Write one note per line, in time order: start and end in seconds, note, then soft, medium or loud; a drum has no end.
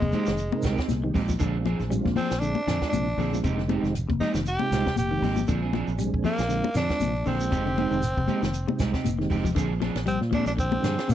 0.00 0.11 F1 medium
0.00 0.16 C3 medium
0.00 1.14 G#3 medium
0.00 kick medium
0.00 closed hi-hat soft
0.00 high conga medium
0.12 0.29 G#3 medium
0.12 0.33 G#3 medium
0.12 0.33 C4 medium
0.12 0.29 C4 medium
0.12 0.30 D#4 medium
0.12 0.33 D#4 medium
0.12 0.30 G4 medium
0.12 0.33 G4 loud
0.12 closed hi-hat medium
0.12 high conga medium
0.12 low conga medium
0.12 shekere soft
0.26 0.49 F1 medium
0.26 0.41 D#3 medium
0.26 snare medium
0.26 shekere medium
0.37 closed hi-hat medium
0.37 shekere medium
0.52 0.67 C3 medium
0.52 0.78 G#3 medium
0.52 0.78 C4 medium
0.52 0.78 D#4 medium
0.52 0.78 A#4 loud
0.52 high conga loud
0.62 0.76 C2 medium
0.62 0.78 G#3 medium
0.62 0.77 C4 medium
0.62 0.76 D#4 medium
0.62 0.79 G4 medium
0.62 kick medium
0.62 snare medium
0.62 closed hi-hat medium
0.62 shekere medium
0.77 0.93 C4 soft
0.77 0.92 D#4 medium
0.77 muted fingered electric bass stroke soft
0.77 kick medium
0.77 snare medium
0.77 closed hi-hat soft
0.77 shekere soft
0.89 1.12 C2 medium
0.89 snare soft
0.89 closed hi-hat medium
0.89 high conga medium
0.89 shekere medium
1.03 1.18 D#3 medium
1.03 1.22 G#3 medium
1.03 1.22 C4 medium
1.03 1.22 D#4 medium
1.03 1.22 G4 medium
1.14 1.38 A#1 loud
1.14 1.31 G#3 medium
1.14 1.31 C4 medium
1.14 1.31 D#4 medium
1.14 1.31 G4 medium
1.14 kick medium
1.14 open hi-hat medium
1.14 low conga medium
1.14 shekere soft
1.28 1.35 F3 medium
1.28 kick medium
1.28 shekere medium
1.39 1.74 A#1 loud
1.39 1.55 D3 loud
1.39 1.56 F3 medium
1.39 1.66 G#3 medium
1.39 1.56 C4 medium
1.39 1.66 C4 medium
1.39 1.56 D4 medium
1.39 1.66 D4 medium
1.39 1.66 F4 medium
1.39 1.57 G#4 medium
1.39 kick medium
1.39 closed hi-hat medium
1.39 shekere medium
1.65 1.82 F3 medium
1.65 1.80 F3 medium
1.65 1.83 C4 medium
1.65 1.82 D4 medium
1.65 1.83 G#4 medium
1.65 closed hi-hat medium
1.65 high conga loud
1.80 2.02 A#1 medium
1.80 snare soft
1.80 closed hi-hat soft
1.80 low conga medium
1.80 shekere soft
1.89 2.05 G3 medium
1.89 2.16 G#3 medium
1.89 2.16 C4 medium
1.89 2.16 D4 medium
1.89 2.17 F4 medium
1.89 closed hi-hat medium
1.89 shekere medium
2.05 2.15 A#1 medium
2.05 kick medium
2.05 snare soft
2.05 high conga medium
2.16 2.33 F3 medium
2.16 2.31 F3 medium
2.16 2.33 C4 medium
2.16 2.41 C4 loud
2.16 2.33 D4 medium
2.16 2.34 G#4 medium
2.16 open hi-hat medium
2.16 high conga medium
2.16 low conga medium
2.16 shekere soft
2.30 2.53 A#1 medium
2.30 snare medium
2.30 closed hi-hat soft
2.30 shekere medium
2.40 2.56 D3 medium
2.40 2.61 G#3 medium
2.40 2.61 C4 medium
2.40 2.89 D4 loud
2.40 2.62 D4 medium
2.40 2.62 G#4 medium
2.40 closed hi-hat medium
2.40 shekere medium
2.55 high conga medium
2.67 2.80 F2 medium
2.67 2.82 D3 medium
2.67 2.82 F3 medium
2.67 2.81 C4 medium
2.67 2.81 D4 medium
2.67 2.80 G#4 medium
2.67 snare medium
2.67 closed hi-hat soft
2.67 shekere medium
2.81 3.07 G#3 medium
2.81 3.08 C4 medium
2.81 2.97 C4 soft
2.81 2.96 D4 soft
2.81 3.08 D4 medium
2.81 3.08 F4 medium
2.81 2.96 G#4 soft
2.81 muted fingered electric bass stroke soft
2.81 kick medium
2.81 snare medium
2.81 closed hi-hat soft
2.81 shekere soft
2.89 3.15 A#1 medium
2.89 3.39 D4 medium
2.89 closed hi-hat medium
2.89 high conga medium
2.89 shekere medium
2.93 3.08 C3 medium
3.08 closed hi-hat soft
3.18 3.40 A#1 loud
3.18 3.34 D3 medium
3.18 3.35 F3 medium
3.18 3.35 C4 medium
3.18 3.35 D4 medium
3.18 3.36 G#4 medium
3.18 open hi-hat medium
3.18 low conga medium
3.18 shekere soft
3.32 3.44 G#3 medium
3.32 3.44 C4 medium
3.32 3.45 D4 medium
3.32 3.45 F4 medium
3.32 high conga medium
3.32 shekere medium
3.44 3.78 F1 medium
3.44 3.52 C3 medium
3.44 3.61 G#3 medium
3.44 3.61 C4 medium
3.44 3.61 D#4 medium
3.44 3.61 G4 medium
3.44 kick medium
3.44 closed hi-hat medium
3.44 shekere medium
3.58 3.73 D3 medium
3.58 snare soft
3.58 closed hi-hat soft
3.67 3.94 G#3 loud
3.67 3.86 G#3 medium
3.67 3.95 C4 medium
3.67 3.86 C4 medium
3.67 3.94 D#4 medium
3.67 3.87 D#4 medium
3.67 3.95 G4 loud
3.67 3.87 G4 medium
3.67 closed hi-hat medium
3.67 high conga loud
3.83 4.05 F1 medium
3.83 3.98 D#3 medium
3.83 snare soft
3.83 shekere soft
3.95 closed hi-hat medium
3.95 shekere medium
4.09 4.19 F1 medium
4.09 4.23 C3 medium
4.09 kick medium
4.09 closed hi-hat soft
4.09 high conga medium
4.20 4.40 G#3 medium
4.20 4.38 G#3 medium
4.20 4.40 C4 medium
4.20 4.38 C4 medium
4.20 4.32 D#4 medium
4.20 4.41 D#4 medium
4.20 4.38 D#4 medium
4.20 4.41 G4 medium
4.20 4.38 G4 medium
4.20 snare soft
4.20 open hi-hat medium
4.20 high conga medium
4.20 low conga medium
4.20 shekere soft
4.34 4.56 F1 medium
4.34 4.49 D#3 medium
4.34 snare medium
4.34 shekere medium
4.46 4.95 G4 loud
4.46 closed hi-hat medium
4.46 shekere medium
4.59 4.74 C3 medium
4.59 4.86 G#3 medium
4.59 4.86 C4 medium
4.59 4.86 D#4 medium
4.59 4.87 F4 medium
4.59 high conga loud
4.72 4.84 C2 medium
4.72 4.89 G#3 medium
4.72 4.89 C4 medium
4.72 4.89 D#4 medium
4.72 4.89 G4 medium
4.72 snare medium
4.72 closed hi-hat soft
4.72 shekere medium
4.86 5.01 C3 medium
4.86 kick medium
4.86 snare medium
4.86 closed hi-hat soft
4.86 shekere soft
4.96 5.19 F1 medium
4.96 5.45 G4 medium
4.96 closed hi-hat medium
4.96 high conga medium
4.96 shekere medium
5.11 5.26 D#3 medium
5.11 5.30 G#3 medium
5.11 5.30 C4 medium
5.11 5.30 D#4 medium
5.11 5.31 G4 medium
5.22 5.44 G#1 medium
5.22 5.39 G#3 medium
5.22 5.39 C4 medium
5.22 5.40 D#4 medium
5.22 5.40 G4 medium
5.22 open hi-hat medium
5.22 high conga medium
5.22 low conga medium
5.22 shekere soft
5.36 5.43 F3 medium
5.36 high conga medium
5.36 shekere medium
5.48 5.82 A#1 loud
5.48 5.63 D3 medium
5.48 5.62 F3 medium
5.48 5.74 G#3 medium
5.48 5.62 C4 medium
5.48 5.74 C4 medium
5.48 5.62 D4 medium
5.48 5.74 D4 medium
5.48 5.75 F4 medium
5.48 5.61 G#4 medium
5.48 kick medium
5.48 closed hi-hat medium
5.48 shekere medium
5.62 5.73 C4 soft
5.62 5.73 D4 soft
5.62 5.74 G#4 medium
5.73 5.90 F3 medium
5.73 5.88 F3 medium
5.73 5.90 C4 medium
5.73 5.91 D4 medium
5.73 5.91 G#4 medium
5.73 closed hi-hat medium
5.73 high conga loud
5.88 6.10 A#1 medium
5.88 closed hi-hat soft
5.88 shekere soft
5.98 6.13 G3 medium
5.98 6.24 G#3 medium
5.98 6.25 C4 medium
5.98 6.25 D4 medium
5.98 6.25 G#4 medium
5.98 closed hi-hat medium
5.98 shekere medium
6.14 6.23 A#1 medium
6.14 kick medium
6.24 6.39 F3 medium
6.24 6.41 F3 medium
6.24 6.73 A#3 loud
6.24 6.41 C4 medium
6.24 6.42 D4 medium
6.24 6.42 G#4 medium
6.24 open hi-hat medium
6.24 high conga medium
6.24 low conga medium
6.24 shekere soft
6.38 6.60 A#1 medium
6.38 snare medium
6.38 closed hi-hat soft
6.38 shekere medium
6.48 6.64 D3 medium
6.48 6.69 G#3 medium
6.48 6.70 C4 medium
6.48 6.70 D4 medium
6.48 6.70 F4 medium
6.48 snare soft
6.48 closed hi-hat medium
6.48 shekere medium
6.64 high conga loud
6.74 6.87 F2 medium
6.74 6.90 D3 medium
6.74 6.92 F3 medium
6.74 6.92 C4 medium
6.74 6.92 D4 medium
6.74 7.29 D4 loud
6.74 6.93 G#4 medium
6.74 snare medium
6.74 closed hi-hat soft
6.74 shekere medium
6.89 7.15 G#3 medium
6.89 7.15 C4 medium
6.89 7.15 D4 medium
6.89 7.16 F4 medium
6.89 muted fingered electric bass stroke soft
6.89 kick medium
6.89 snare medium
6.89 closed hi-hat soft
6.89 shekere soft
7.00 7.23 A#1 medium
7.00 7.15 C3 medium
7.00 snare soft
7.00 closed hi-hat medium
7.00 high conga medium
7.00 shekere medium
7.16 closed hi-hat soft
7.26 7.48 A#1 medium
7.26 7.41 D3 medium
7.26 7.43 F3 medium
7.26 7.43 C4 medium
7.26 9.06 C4 loud
7.26 7.43 D4 medium
7.26 7.44 G#4 medium
7.26 open hi-hat medium
7.26 low conga medium
7.26 shekere soft
7.40 7.53 G#3 medium
7.40 7.53 C4 medium
7.40 7.53 D4 medium
7.40 7.53 F4 medium
7.40 shekere medium
7.52 7.86 F1 loud
7.52 7.60 C3 medium
7.52 7.66 G#3 medium
7.52 7.66 C4 medium
7.52 7.67 D#4 medium
7.52 7.65 G4 medium
7.52 kick medium
7.52 closed hi-hat medium
7.52 shekere medium
7.65 7.80 D3 medium
7.65 7.77 C4 soft
7.65 7.78 G4 medium
7.65 closed hi-hat soft
7.77 8.03 G#3 medium
7.77 7.94 G#3 medium
7.77 8.03 C4 medium
7.77 7.94 C4 medium
7.77 7.95 D#4 medium
7.77 8.04 D#4 medium
7.77 7.95 G4 medium
7.77 8.04 G4 medium
7.77 closed hi-hat medium
7.77 high conga medium
7.91 8.13 F1 medium
7.91 8.06 D#3 medium
7.91 shekere soft
8.02 closed hi-hat medium
8.02 shekere medium
8.17 8.27 F1 medium
8.17 8.32 C3 medium
8.17 kick medium
8.17 closed hi-hat soft
8.28 8.45 G#3 medium
8.28 8.48 G#3 medium
8.28 8.45 C4 medium
8.28 8.48 C4 medium
8.28 8.48 D#4 medium
8.28 8.45 D#4 medium
8.28 8.49 G4 loud
8.28 8.45 G4 medium
8.28 closed hi-hat medium
8.28 high conga medium
8.28 low conga medium
8.28 shekere soft
8.42 8.64 F1 medium
8.42 8.57 D#3 medium
8.42 snare medium
8.42 shekere medium
8.54 closed hi-hat medium
8.54 shekere medium
8.68 8.82 C3 medium
8.68 8.94 G#3 medium
8.68 8.94 C4 medium
8.68 8.94 D#4 medium
8.68 8.95 G4 loud
8.68 high conga loud
8.79 8.92 C2 medium
8.79 8.94 G#3 medium
8.79 8.93 C4 medium
8.79 8.93 D#4 medium
8.79 8.92 G4 medium
8.79 kick medium
8.79 snare medium
8.79 closed hi-hat soft
8.79 shekere medium
8.93 9.08 C3 medium
8.93 9.08 C4 soft
8.93 9.08 D#4 soft
8.93 9.08 G4 medium
8.93 muted fingered electric bass stroke soft
8.93 kick medium
8.93 snare medium
8.93 closed hi-hat soft
8.93 shekere soft
9.04 9.27 F1 medium
9.04 closed hi-hat medium
9.04 high conga medium
9.04 shekere medium
9.19 9.33 D#3 medium
9.19 9.37 G#3 medium
9.19 9.38 C4 medium
9.19 9.38 D#4 medium
9.19 9.38 G4 medium
9.19 snare soft
9.30 9.52 F1 medium
9.30 9.47 G#3 medium
9.30 9.47 C4 medium
9.30 9.47 D#4 medium
9.30 9.47 G4 medium
9.30 kick medium
9.30 open hi-hat medium
9.30 low conga medium
9.30 shekere soft
9.44 9.51 F3 medium
9.44 kick medium
9.44 shekere medium
9.55 9.90 A#1 loud
9.55 9.70 D3 medium
9.55 9.73 F3 medium
9.55 9.73 C4 medium
9.55 9.73 D4 medium
9.55 9.73 G#4 medium
9.55 kick medium
9.55 ride bell medium
9.55 shekere medium
9.80 9.95 F3 medium
9.80 9.98 F3 medium
9.80 9.98 C4 medium
9.80 9.99 D4 medium
9.80 9.99 G#4 medium
9.80 snare soft
9.80 ride bell medium
9.80 high conga medium
9.95 10.17 A#1 medium
9.95 snare medium
9.95 ride bell medium
9.95 shekere soft
10.06 10.21 G3 medium
10.06 10.19 C4 medium
10.06 ride bell medium
10.06 shekere medium
10.21 10.43 A#2 medium
10.21 snare soft
10.31 10.46 F3 medium
10.31 10.49 F3 medium
10.31 10.52 G#3 medium
10.31 10.52 C4 medium
10.31 10.49 C4 medium
10.31 10.53 D4 medium
10.31 10.49 D4 medium
10.31 10.47 D4 medium
10.31 10.53 F4 medium
10.31 10.50 G#4 medium
10.31 kick medium
10.31 ride bell medium
10.31 high conga medium
10.31 low conga medium
10.31 shekere soft
10.46 10.77 A#1 medium
10.46 10.52 D4 medium
10.46 snare soft
10.46 ride bell soft
10.46 shekere medium
10.57 10.72 D3 medium
10.57 11.13 C4 medium
10.57 kick medium
10.57 ride bell soft
10.57 shekere medium
10.72 10.90 G#3 medium
10.72 10.91 C4 medium
10.72 10.91 D4 medium
10.72 10.91 F4 medium
10.72 high conga loud
10.82 10.95 G2 medium
10.82 10.97 D3 medium
10.82 10.98 F3 medium
10.82 10.98 C4 medium
10.82 10.98 D4 medium
10.82 10.97 G#4 medium
10.82 snare medium
10.82 ride bell soft
10.82 shekere medium
10.98 11.13 C4 soft
10.98 11.13 D4 soft
10.98 11.12 G#4 soft
10.98 snare medium
10.98 ride bell medium
10.98 shekere soft
11.08 11.14 A#2 medium
11.08 11.14 C3 medium
11.08 11.14 G#3 medium
11.08 11.14 C4 medium
11.08 11.14 D4 medium
11.08 11.14 F4 medium
11.08 ride bell medium
11.08 high conga medium
11.08 shekere medium